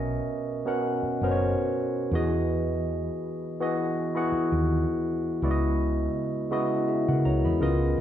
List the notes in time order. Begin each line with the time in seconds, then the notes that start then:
Already playing: B1 B2 B3 C#4 A#4 D#5
0.65 B2 B3 C#4 A#4 F#5
1.03 muted fretless electric bass stroke
1.21 F#1 B2 B3 C#4 A#4 C5
1.31 C#5
2.11 E2 E3 B3 F#4 G#4 D#5
3.60 E3 B3 F#4 G#4 D#5
4.15 B3 E4 F#4 G#4 F#5
4.32 muted fretless electric bass stroke
4.52 D#2
5.42 C#2 C#3 G#3 B3 E4 F#4 D5
5.51 D#5
6.50 C#3 G#3 B3 E4 F#4 D#5
6.88 G#4 E5
7.08 C#3 A#4 F#5
7.25 C#2 C#5 A#5
7.45 E2 D#5 B5
7.60 C#2 C#3 B3 F4 A#4 D#5